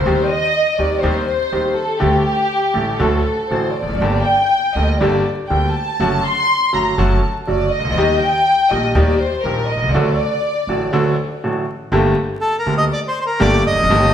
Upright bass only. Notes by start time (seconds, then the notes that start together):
0.06 D#2
0.78 D#2
1.03 D#2
1.52 D#2
2.01 D2
2.76 A1
3.00 D2
3.50 A1
3.82 E1
3.88 F1
3.94 F#1
4.00 G1
4.75 D2
5.01 G1
5.50 D2
6.00 F#1
6.74 F#1
6.98 F#1
7.49 F#1
7.80 C2
7.85 C#2
7.91 D2
7.96 D#2
8.71 A#1
8.95 D#2
9.44 A#1
9.75 B1
9.82 C2
9.87 C#2
9.94 D2
10.67 A1
11.92 G1
12.66 D2
13.41 G1
13.72 E1
13.77 F1
13.84 F#1
13.90 G1